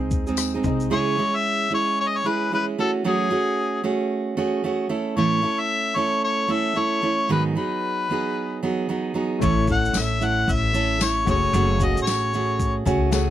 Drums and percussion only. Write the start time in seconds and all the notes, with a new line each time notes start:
0.11 kick, shaker
0.27 shaker
0.37 cross-stick, tambourine, shaker
0.63 kick, cross-stick, shaker
0.80 shaker
9.42 kick, shaker
9.68 kick, shaker
9.85 shaker
9.94 snare, tambourine, shaker
10.22 shaker
10.48 kick, shaker
10.74 shaker
11.00 snare, tambourine, shaker
11.27 kick, snare, shaker
11.54 shaker
11.80 kick, shaker
11.97 shaker
12.07 snare, tambourine, shaker
12.33 shaker
12.60 kick, shaker
12.86 kick, shaker
13.12 snare, tambourine, shaker